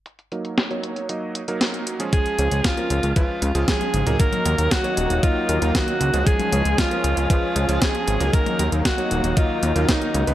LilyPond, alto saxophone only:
\new Staff \with { instrumentName = "Alto saxophone" } { \time 4/4 \key ees \minor \tempo 4 = 116 r1 | aes'4 f'4 f'4 aes'4 | bes'4 ges'4 f'4 ges'4 | aes'4 f'4 f'4 aes'4 |
bes'4 ges'4 f'4 ees'8. r16 | }